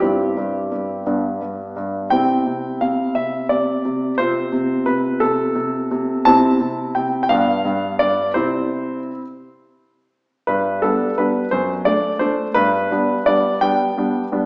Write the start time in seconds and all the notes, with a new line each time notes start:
0.00 G2 C4 E4 G4
0.37 G2
0.72 G2
1.06 G2 B3 D4
1.41 G2
1.76 G2
2.10 C3 C4 E4 G5
2.47 C3
2.81 C3 F5
3.15 C3 E5
3.49 C3 D5
3.85 C3
4.18 C3 C4 F4 C5
4.52 C3
4.86 C3 B4
5.20 C3 A4
5.55 C3
5.91 C3
6.25 C3 C4 E4 A5
6.61 C3
6.95 C3 G5
7.23 G5
7.29 G2 B3 D4 F5
7.65 G2
7.99 G2 D5
8.34 C3 C4 E4 C5
10.47 G2 B4
10.82 G3 B3 D4 A4
11.18 G3 B3 D4 B4
11.51 F#2 C5
11.85 A3 D4 D5
12.19 A3 D4 C5
12.54 G2 B4
12.91 G3 B3 D4
13.26 G3 B3 D4 D5
13.61 G3 B3 D4 G5
13.97 G3 B3 D4
14.32 G3 B3 D4